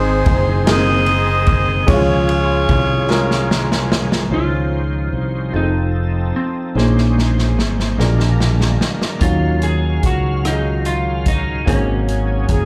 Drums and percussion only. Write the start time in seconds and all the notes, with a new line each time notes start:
0.26 kick, ride
0.67 snare, ride
1.06 ride
1.46 kick, ride
1.88 kick, ride
2.29 ride
2.69 kick, ride
3.11 snare
3.31 snare
3.51 snare
3.72 snare
3.92 snare
4.12 snare
6.78 snare
6.98 snare
7.19 snare
7.39 snare
7.59 snare
7.80 snare
8.00 snare
8.20 snare
8.40 snare
8.61 snare
8.81 snare
9.02 snare
9.21 kick, closed hi-hat
9.62 closed hi-hat
10.03 kick, closed hi-hat
10.45 cross-stick, closed hi-hat
10.85 closed hi-hat
11.26 kick, closed hi-hat
11.67 kick, closed hi-hat
12.09 closed hi-hat
12.49 kick, closed hi-hat